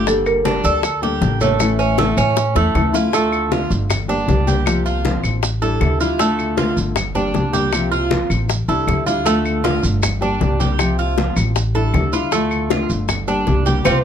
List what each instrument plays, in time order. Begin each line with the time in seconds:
Already playing: upright bass G1
0.06 nylon-string guitar D3 G3 A#3 D4 A4, marimba A4, high bongo, high conga, maracas
0.26 marimba A#4, high conga, claves, maracas
0.44 nylon-string guitar G3 A#3 D4 A4, cuban tres D4, high bongo, high conga, maracas
0.64 upright bass D2, cuban tres A4, marimba D5, high bongo, high conga, maracas
0.83 muted nylon-string guitar stroke, high bongo, high conga, claves, maracas
1.02 nylon-string guitar G3 A#3 D4 A4, cuban tres G4, high bongo, high conga, maracas
1.21 upright bass A1, nylon-string guitar G3 A#3 D4 A4, high bongo, low bongo, high conga, maracas
1.41 nylon-string guitar G3 A#3 D4 A4, cuban tres A3, marimba C#5, high bongo, high conga, maracas
1.60 nylon-string guitar E3 A3 C#4 E4, high bongo, high conga, claves, maracas
1.79 cuban tres C#4, high conga, maracas
1.98 nylon-string guitar E3 A3 C#4 E4, cuban tres A3, high bongo, high conga, maracas
2.17 upright bass A2, cuban tres C#4, high bongo, high conga, claves, maracas
2.36 muted nylon-string guitar stroke, high bongo, high conga, maracas
2.55 upright bass E2, cuban tres A3, nylon-string guitar A3 C#4 E4, high bongo, high conga, maracas
2.74 upright bass D2, nylon-string guitar E3 A3 C#4 E4, low bongo, high conga, claves, maracas
2.93 nylon-string guitar A3 C#4 E4, cuban tres F4, low bongo, high conga, maracas
3.12 nylon-string guitar D3 A3 D4 F4, cuban tres A3, high bongo, high conga, maracas
3.32 high conga, claves, maracas
3.51 nylon-string guitar D3 A3 D4 F4, cuban tres F4, high bongo, high conga, maracas
3.70 upright bass G1, high bongo, high conga, maracas
3.90 muted nylon-string guitar stroke, high bongo, high conga, low conga, claves, maracas
4.08 nylon-string guitar G3 A#3 D4 G4, cuban tres D4, high bongo, high conga, maracas
4.27 upright bass C2, nylon-string guitar G3 A#3 D4 G4, high bongo, low bongo, high conga, maracas
4.47 nylon-string guitar G3 A#3 D4 G4, cuban tres G4, high bongo, high conga, maracas
4.66 nylon-string guitar C3 F3 A#3 C4 F4, high bongo, high conga, claves, maracas
4.86 cuban tres F4, high conga, maracas
5.05 nylon-string guitar F3 A#3 C4 F4, high bongo, high conga, maracas
5.23 upright bass A1, high bongo, high conga, claves, maracas
5.43 muted nylon-string guitar stroke, high bongo, high conga, maracas
5.62 nylon-string guitar G3 D4 E4, cuban tres A4, high bongo, high conga, maracas
5.81 upright bass D2, nylon-string guitar D3 G3 D4 E4, high bongo, low bongo, high conga, claves, maracas
6.00 nylon-string guitar G3 D4 E4, cuban tres F4, high bongo, high conga, maracas
6.19 nylon-string guitar D3 A3 D4 F4, cuban tres A3, high bongo, high conga, maracas
6.39 high conga, claves, maracas
6.57 nylon-string guitar D3 A3 D4 F4, cuban tres F4, high bongo, high conga, maracas
6.77 upright bass G1, high bongo, high conga, maracas
6.96 muted nylon-string guitar stroke, high bongo, high conga, low conga, claves, maracas
7.15 nylon-string guitar G3 A#3 D4 G4, cuban tres D4, high bongo, high conga, low conga, maracas
7.34 upright bass C2, nylon-string guitar G3 A#3 D4 G4, high bongo, low bongo, high conga, maracas
7.53 nylon-string guitar G3 A#3 D4 G4, cuban tres G4, high bongo, high conga, maracas
7.72 nylon-string guitar C3 F3 A#3 C4 F4, high bongo, high conga, claves, maracas
7.92 cuban tres F4, high conga, maracas
8.11 nylon-string guitar F3 A#3 C4 F4, high bongo, high conga, maracas
8.30 upright bass A1, high bongo, high conga, claves, maracas
8.49 muted nylon-string guitar stroke, high bongo, high conga, maracas
8.68 upright bass C2, nylon-string guitar G3 D4 E4, cuban tres A4, high bongo, high conga, maracas
8.87 upright bass D2, nylon-string guitar D3 G3 D4 E4, high bongo, low bongo, high conga, claves, maracas
9.06 nylon-string guitar G3 D4 E4, cuban tres F4, high bongo, high conga, maracas
9.25 nylon-string guitar D3 A3 D4 F4, cuban tres A3, high bongo, maracas
9.45 high conga, claves, maracas
9.64 nylon-string guitar D3 A3 D4 F4, cuban tres F4, high bongo, high conga, maracas
9.83 upright bass G1, high bongo, high conga, maracas
10.03 muted nylon-string guitar stroke, high bongo, high conga, low conga, claves, maracas
10.21 nylon-string guitar G3 A#3 D4 G4, cuban tres D4, high bongo, high conga, maracas
10.40 upright bass C2, nylon-string guitar G3 A#3 D4 G4, high bongo, low bongo, high conga, maracas
10.59 nylon-string guitar G3 A#3 D4 G4, cuban tres G4, high bongo, high conga, maracas
10.79 nylon-string guitar C3 F3 A#3 C4 F4, high bongo, high conga, claves, maracas
10.99 cuban tres F4, high conga, maracas
11.17 nylon-string guitar F3 A#3 C4 F4, high bongo, high conga, maracas
11.36 upright bass A1, high bongo, high conga, claves, maracas
11.56 muted nylon-string guitar stroke, high bongo, high conga, maracas
11.75 nylon-string guitar G3 D4 E4, cuban tres A4, high bongo, high conga, maracas
11.94 upright bass D2, nylon-string guitar D3 G3 D4 E4, high bongo, low bongo, high conga, claves, maracas
12.13 nylon-string guitar G3 D4 E4, cuban tres F4, high bongo, high conga, maracas
12.32 nylon-string guitar D3 A3 D4 F4, cuban tres A3, high bongo, high conga, maracas
12.51 high conga, claves, maracas
12.70 nylon-string guitar D3 A3 D4 F4, cuban tres F4, high bongo, high conga, maracas
12.90 upright bass G1, high bongo, high conga, maracas
13.09 muted nylon-string guitar stroke, high bongo, high conga, low conga, claves, maracas
13.28 nylon-string guitar G3 A#3 D4 G4, cuban tres D4, high bongo, high conga, maracas
13.47 upright bass C2, nylon-string guitar G3 A#3 D4 G4, high bongo, low bongo, high conga, maracas
13.66 nylon-string guitar G3 A#3 D4 G4, cuban tres G4, high bongo, high conga, maracas
13.85 upright bass C2, nylon-string guitar A#3 C4 F4, cuban tres C4 F4 G4, high bongo, high conga, claves, maracas